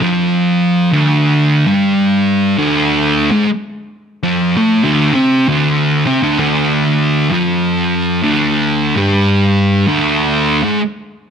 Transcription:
0.01 distorted electric guitar F2 F3
0.92 distorted electric guitar D2 D3
1.66 distorted electric guitar G2 G3
2.57 distorted electric guitar D2 D3
3.32 distorted electric guitar G#2 G#3
3.49 muted distorted electric guitar stroke
4.23 distorted electric guitar F2 F3
4.57 distorted electric guitar A2 A3
4.84 distorted electric guitar D2 D3
5.14 distorted electric guitar C3 C4
5.48 distorted electric guitar D2 D3
6.06 distorted electric guitar C3 C4
6.22 distorted electric guitar D2 D3
6.39 distorted electric guitar D2 D3
7.30 distorted electric guitar F2 F3
8.22 distorted electric guitar D2 D3
8.96 distorted electric guitar G2 G3
9.88 distorted electric guitar D2 D3
10.63 distorted electric guitar G#2 G#3
10.80 muted distorted electric guitar stroke

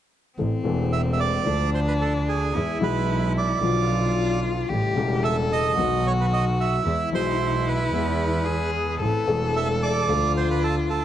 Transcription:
0.38 grand piano A1 A2 E3 A3 C4 A4, double bass A1, cello C4
0.63 grand piano E1 E2 E3 A3 C4, double bass E1
0.67 grand piano A4
0.93 bandoneon E5
1.13 bandoneon E5
1.20 bandoneon D5
1.43 grand piano D2 D3 F3 A3 D4, double bass D2, cello D4
1.48 grand piano A4
1.74 bandoneon C5
1.88 bandoneon B4
2.01 bandoneon A4
2.29 bandoneon G#4
2.54 grand piano E2 E3 G#3 B3 G#4, double bass E2, cello E4
2.79 grand piano B1 B2 E3 G#3 B3 G#4, double bass B1
2.83 bandoneon B4
3.38 bandoneon D5
3.61 grand piano B1 B2 D3 F3 B3 F4, double bass B1, cello F4
4.69 grand piano A1 A2 C#3 G3 A3 E4, double bass A1, cello G4
4.95 double bass E1, grand piano E1 E2 C#3 G3 A3
4.99 grand piano E4
5.23 cello A4, bandoneon E5
5.52 bandoneon D#5
5.76 grand piano B1 B2 D#3 F#3 B3 F#4, double bass B1, cello F#4
6.07 bandoneon C#5
6.21 bandoneon B4
6.33 bandoneon D#5
6.60 bandoneon E5
6.85 grand piano E2 E3 G#3 B3 G#4, double bass E2, cello E4
7.11 double bass B1, grand piano B1 B2 E3 G#3 G#4, bandoneon C5
7.67 bandoneon B4
7.93 double bass E2, grand piano E2 E3 G#3 B3 G#4
8.45 cello G#4
9.01 double bass A1, grand piano A1 A2 E3 A3 C4 A4, cello A4
9.26 grand piano E1 E2 E3 A3 C4, double bass E1
9.30 grand piano A4
9.57 bandoneon E5
9.83 bandoneon D5
10.07 double bass D2, grand piano D2 D3 F3 A3 D4 A4, cello F4
10.37 bandoneon C5
10.51 bandoneon B4
10.64 bandoneon A4
10.90 bandoneon A4

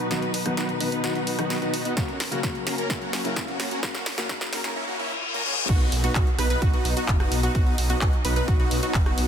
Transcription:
Already playing: string section B2 F#3 D#4 B4, riser
0.10 grand piano D#3 F#3 B3 F#4, supersaw synth B3 D#4 F#4, snare, closed hi-hat
0.22 closed hi-hat
0.34 open hi-hat
0.45 grand piano D#3 F#3 B3 F#4, supersaw synth B3 D#4 F#4, cross-stick, closed hi-hat
0.57 supersaw synth B3 D#4 F#4, snare, closed hi-hat
0.69 closed hi-hat
0.80 grand piano D#3 F#3 B3 F#4, supersaw synth B3 D#4 B4, open hi-hat
0.92 supersaw synth B3 D#4 B4, closed hi-hat
1.03 grand piano D#3 F#3 B3 F#4, supersaw synth B3 D#4 F#4, snare, closed hi-hat
1.15 supersaw synth B3 D#4 F#4, closed hi-hat
1.27 open hi-hat
1.38 grand piano D#3 F#3 B3 D#4, supersaw synth B3 D#4 F#4, cross-stick, closed hi-hat
1.50 snare, open hi-hat
1.61 grand piano D#3 F#3 B3 F#4, supersaw synth B3 D#4 F#4, closed hi-hat
1.74 open hi-hat
1.85 supersaw synth B3 D#4 F#4, closed hi-hat
1.96 string section F#2 F#3 C#4 A#4, grand piano C#3 F#3 A#3 F#4, supersaw synth A#3 C#4 F#4, kick, snare, closed hi-hat
2.09 closed hi-hat
2.20 snare, open hi-hat
2.31 grand piano C#3 F#3 A#3 F#4, supersaw synth A#3 C#4 F#4, closed hi-hat
2.43 supersaw synth A#3 C#4 F#4, kick, snare, closed hi-hat
2.55 closed hi-hat
2.66 grand piano C#3 F#3 A#3 F#4, supersaw synth A#3 C#4 A#4, snare, open hi-hat
2.78 supersaw synth A#3 C#4 A#4, closed hi-hat
2.89 grand piano C#3 F#3 A#3 F#4, supersaw synth A#3 C#4 E4, kick, snare, closed hi-hat
3.02 supersaw synth A#3 C#4 F#4, closed hi-hat
3.13 snare, open hi-hat
3.24 grand piano C#3 F#3 A#3 E4, supersaw synth A#3 C#4 F#4, closed hi-hat
3.36 kick, snare, closed hi-hat
3.47 grand piano C#3 F#3 A#3 F#4, supersaw synth A#3 C#4 F#4, closed hi-hat
3.60 snare, open hi-hat
3.71 supersaw synth A#3 C#4 F#4, closed hi-hat
3.82 grand piano C#3 F#3 A#3 F#4, supersaw synth A#3, kick, snare, closed hi-hat
3.95 snare, closed hi-hat
4.06 snare, open hi-hat
4.17 grand piano C#3 F#3 A#3 F#4, supersaw synth A#3 C#4 F#4, snare, closed hi-hat
4.29 supersaw synth C#4 F#4, kick, snare, closed hi-hat
4.41 snare, closed hi-hat
4.52 grand piano C#3 F#3 A#3 F#4, supersaw synth A#3 C#4 A#4, snare, open hi-hat
4.64 supersaw synth A#3 C#4 A#4, snare, closed hi-hat
4.76 supersaw synth A#3 C#4 E4, reverse cymbal
4.88 supersaw synth A#3 C#4 F#4
4.99 supersaw synth A#3 C#4 E4
5.34 supersaw synth A#3 C#4 A#4
5.46 supersaw synth A#3 C#4 G#4
5.57 supersaw synth A#3 C#4 G#4
5.69 detuned saw bass B1, string section F#3 B3 D#4, supersaw synth B3 D#4 F#4, synth pluck F#4, kick, closed hi-hat, crash
5.81 closed hi-hat
5.92 detuned saw bass B1, open hi-hat
6.04 supersaw synth B3 D#4 F#4, synth pluck F#4, closed hi-hat
6.15 detuned saw bass B1, supersaw synth B3 F#4, synth pluck F#4, kick, clap, closed hi-hat
6.27 closed hi-hat
6.39 detuned saw bass B1, supersaw synth B3 D#4 B4, synth pluck B4, cross-stick, open hi-hat
6.50 supersaw synth B3 D#4 B4, synth pluck B4, closed hi-hat
6.62 detuned saw bass B1, supersaw synth B3 D#4, synth pluck F#4, kick, closed hi-hat
6.74 supersaw synth B3 D#4 F#4, synth pluck F#4, closed hi-hat
6.85 detuned saw bass B1, open hi-hat
6.97 supersaw synth B3 D#4 F#4, synth pluck F#4, closed hi-hat
7.08 detuned saw bass F#1, kick, clap, closed hi-hat
7.20 supersaw synth B3 D#4 F#4, synth pluck F#4, cross-stick, closed hi-hat
7.32 detuned saw bass B1, open hi-hat
7.43 supersaw synth B3 D#4 F#4, synth pluck F#4, closed hi-hat
7.55 detuned saw bass B1, supersaw synth B3 D#4 F#4, string section C#4, synth pluck F#4, kick, closed hi-hat
7.67 closed hi-hat
7.78 detuned saw bass B1, open hi-hat
7.90 supersaw synth B3 D#4 F#4, synth pluck F#4, closed hi-hat
8.01 detuned saw bass B1, synth pluck F#4, kick, clap, closed hi-hat
8.13 closed hi-hat
8.25 detuned saw bass B1, supersaw synth B3 D#4 B4, synth pluck B4, open hi-hat
8.36 supersaw synth B3 D#4 B4, synth pluck B4, closed hi-hat
8.48 detuned saw bass B1, supersaw synth B3 D#4 F#4, synth pluck F#4, kick, closed hi-hat
8.60 supersaw synth B3 D#4 F#4, synth pluck F#4, closed hi-hat
8.71 detuned saw bass B1, open hi-hat
8.83 supersaw synth B3 D#4 F#4, synth pluck F#4, closed hi-hat
8.94 detuned saw bass F#1, kick, clap, open hi-hat
9.06 supersaw synth B3 D#4 F#4, synth pluck F#4, cross-stick, closed hi-hat
9.18 detuned saw bass B1, open hi-hat

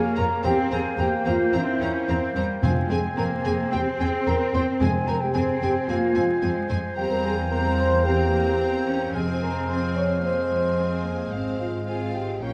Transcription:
Already playing: cello section A#3, bassoon A#3, clarinet C#5, oboe F5, flute G#5
0.16 double bass section F2, viola section F4, french horn section A#4, violin section C#5 A#5, flute A#5
0.43 double bass section E2, viola section C4, cello section C4, french horn section G4, violin section C5 A#5, clarinet C5, oboe G5, flute G5
0.70 double bass section E2, viola section C4, french horn section G#4, violin section C5 A#5, flute G#5
0.98 double bass section E2, cello section A#3, viola section C4, french horn section G4, violin section C5 A#5, flute G5
1.25 double bass section E2, viola section C4, french horn section F4, violin section C5 A#5, flute F5
1.52 double bass section E2, viola section C4, cello section C4, french horn section E4, violin section C5 A#5, flute E5
1.60 french horn section C#4
1.68 french horn section E4
1.80 double bass section E2, viola section C4, cello section C#4, violin section C5 A#5
2.08 double bass section E2, viola section C4, cello section C4, violin section C5 A#5
2.34 double bass section E2, cello section G3, viola section C4, violin section C5 A#5
2.62 timpani F2, double bass section F2, cello section G#3, viola section C4, bassoon C4, french horn section F4, violin section C5 G#5, flute F5, oboe G#5
2.89 double bass section F2, viola section C4, french horn section G#4, violin section C5 G#5, flute G#5
3.17 double bass section F2, cello section A#3, viola section C4, french horn section A#4, violin section C5 G#5, flute A#5
3.44 double bass section F2, viola section C4, french horn section G#4, violin section C5 G#5, flute G#5
3.71 double bass section E2, viola section C4, cello section C4, french horn section G4, violin section C5 G5, flute G5, oboe G5
3.98 double bass section E2, viola section C4, french horn section G#4, violin section C5 G5, flute G#5
4.26 double bass section E2, viola section C4, french horn section A#4, violin section C5 G5, flute A#5
4.53 double bass section E2, viola section C4, violin section C5 G5, french horn section C5, flute C6
4.80 timpani F2, double bass section F2, cello section G#3, viola section C4, french horn section G#4, violin section C5 G#5, clarinet C5, flute G#5, oboe G#5
5.07 double bass section F2, viola section C4, french horn section A#4, violin section C5 G#5, flute A#5
5.20 french horn section G4, flute G5
5.34 double bass section F2, viola section C4, cello section C4, french horn section G#4, violin section C5 G#5, flute G#5
5.61 double bass section F2, viola section C4, french horn section G4, violin section C5 G#5, flute G5
5.88 double bass section F2, cello section A#3, viola section C4, french horn section F4, violin section C5 G#5, flute F5
6.15 double bass section F2, cello section G#3, viola section C4, violin section C5 G#5
6.42 double bass section F2, viola section C4, violin section C5 G#5
6.69 double bass section F2, viola section C4, violin section C5 G#5
6.96 double bass section E2, cello section G3, bassoon A#3, viola section C4, french horn section G4, violin section C5 A#5, flute G5, oboe G5
7.10 french horn section A#4, flute A#5
7.24 french horn section G#4, flute G#5
7.50 cello section G3, viola section C4, french horn section A#4, violin section C5 A#5, flute A#5
7.77 french horn section C5, flute C6
8.05 viola section C4, cello section C4, french horn section G4, violin section C5 A#5, flute G5
8.33 cello section A#3
8.60 cello section C4
8.87 cello section C#4
9.14 timpani F2, double bass section F2, bassoon G#3, cello section C4, viola section C4, french horn section G#4, clarinet C5, violin section C5 G#5, oboe F5, flute G#5
9.41 french horn section A#4, flute A#5
9.67 viola section C4, french horn section C5, violin section C5 G#5, flute C6
9.95 french horn section C#5, flute C#6
10.23 cello section A#3, viola section C4, french horn section C5, violin section C5 G#5, flute C6
10.50 cello section G#3
10.77 cello section C4
11.05 cello section A#3
11.31 double bass section G#1, cello section G#3, viola section C4, french horn section C4, flute C5, violin section C5 F5
11.60 french horn section F4, flute F5
11.87 viola section C4, cello section F4, french horn section G#4, violin section C5 F5, flute G#5
12.14 french horn section G4, flute G5
12.42 double bass section A#1, viola section A#3, bassoon A#3, cello section C#4, french horn section F4, clarinet C#5, violin section C#5 G5, flute F5, oboe G5

